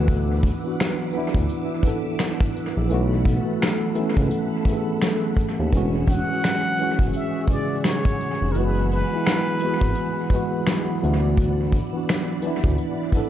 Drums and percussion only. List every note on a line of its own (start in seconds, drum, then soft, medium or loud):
0.08 kick loud
0.08 closed hi-hat medium
0.43 kick medium
0.43 closed hi-hat medium
0.80 finger snap medium
0.80 snare loud
0.80 closed hi-hat medium
1.13 closed hi-hat medium
1.34 kick medium
1.49 closed hi-hat medium
1.83 kick medium
1.83 closed hi-hat medium
2.19 finger snap medium
2.19 snare loud
2.19 closed hi-hat medium
2.41 kick loud
2.56 closed hi-hat medium
2.90 closed hi-hat medium
3.25 kick medium
3.25 closed hi-hat medium
3.62 finger snap medium
3.62 snare loud
3.62 closed hi-hat medium
3.95 closed hi-hat medium
4.17 kick medium
4.31 closed hi-hat medium
4.65 kick medium
4.65 closed hi-hat medium
5.02 finger snap medium
5.02 snare medium
5.02 closed hi-hat medium
5.37 kick medium
5.37 closed hi-hat medium
5.73 kick medium
5.73 closed hi-hat medium
6.08 kick medium
6.08 closed hi-hat medium
6.44 finger snap medium
6.44 snare loud
6.44 closed hi-hat medium
6.77 closed hi-hat medium
6.99 kick medium
7.13 closed hi-hat medium
7.48 kick medium
7.48 closed hi-hat medium
7.84 finger snap medium
7.84 snare medium
7.84 closed hi-hat medium
8.05 kick loud
8.21 closed hi-hat medium
8.55 closed hi-hat medium
8.92 closed hi-hat medium
9.26 finger snap medium
9.26 snare medium
9.26 closed hi-hat medium
9.60 closed hi-hat medium
9.81 kick medium
9.95 closed hi-hat medium
10.30 kick medium
10.30 closed hi-hat medium
10.67 finger snap medium
10.67 snare loud
10.67 closed hi-hat medium
11.03 closed hi-hat medium
11.37 kick loud
11.37 closed hi-hat medium
11.72 kick medium
11.72 closed hi-hat medium
12.09 finger snap medium
12.09 snare loud
12.09 closed hi-hat medium
12.42 closed hi-hat medium
12.64 kick medium
12.78 closed hi-hat medium
13.12 kick medium
13.12 closed hi-hat medium